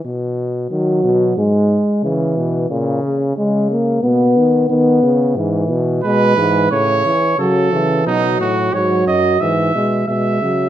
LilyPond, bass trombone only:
\new Staff \with { instrumentName = "Bass trombone" } { \clef bass \time 4/4 \key e \major \tempo 4 = 90 b,4 dis8 b,8 gis,8 r8 cis8 b,8 | cis4 cis4 b,8 dis8 dis8 cis8 | gis,8 b,8 b,8 gis,8 a,8 e8 cis8 cis8 | b,8 a,8 gis,8 fis,8 gis,8 b,8 b,8 cis8 | }